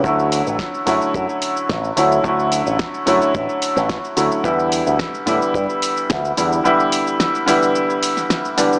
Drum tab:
HH |--o---o---o---o-|--o---o---o---o-|--o---o---o---o-|--o---o---o---o-|
SH |xxxxxxxxxxxxxxxx|xxxxxxxxxxxxxxxx|xxxxxxxxxxxxxxxx|xxxxxxxxxxxxxxxx|
SD |----o-------o---|----o------oo---|----o-------o---|----o------oo---|
BD |o---o-o-o---o---|o---o---o---o---|o---o-o-o---o---|----------------|